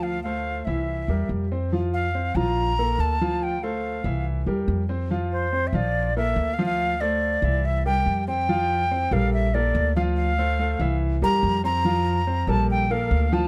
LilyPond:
<<
  \new Staff \with { instrumentName = "Flute" } { \time 4/4 \key f \major \tempo 4 = 142 f''8 f''4 e''4. r4 | r8 f''4 bes''4. a''4 | g''8 f''4. r2 | r8 c''8~ \tuplet 3/2 { c''8 e''16 d''8.~ } d''8 e''8~ \tuplet 3/2 { e''8 f''8 f''8~ } |
f''8 d''4. e''8 g''4 g''8~ | g''4. f''8 e''8 d''4 f''8 | f''2 r8 bes''4 bes''8~ | bes''4. a''8 g''8 f''4 a''8 | }
  \new Staff \with { instrumentName = "Grand piano" } { \time 4/4 \key f \major <f f' f''>8 <a a' c''>4 <e e' e''>4 <g g' bes'>4 <c' c''>8 | <f f' f''>4 <c' c''>8 <f f' f''>4 <bes a' bes'>4 <f f' f''>8~ | <f f' f''>8 <a a' c''>4 <e e' e''>4 <g g' bes'>4 <c' c''>8 | <f f' f''>4 <c' c''>8 <f f' f''>4 <bes a' bes'>4 <f f' f''>8~ |
<f f' f''>8 <a a' c''>4 <e e' e''>4 <g g' bes'>4 <c' c''>8 | <f f' f''>4 <c' c''>8 <g a' bes'>4 <bes a' bes'>4 <f f' f''>8~ | <f f' f''>8 <a a' c''>8 <a a' c''>8 <e e' e''>4 <g g' bes'>4 <c' c''>8 | <f f' f''>4 <c' c''>8 <g a' bes'>4 <bes a' bes'>4 <f f' f''>8 | }
  \new Staff \with { instrumentName = "Upright bass" } { \clef bass \time 4/4 \key f \major d,4. c,4 e,8 f,4~ | f,4. bes,,4. d,4~ | d,4. c,4 e,8 f,4~ | f,4. bes,,4. d,4~ |
d,4. c,4. f,4~ | f,4. bes,,4. d,4~ | d,4. c,4 e,8 f,4~ | f,4. bes,,4. d,4 | }
>>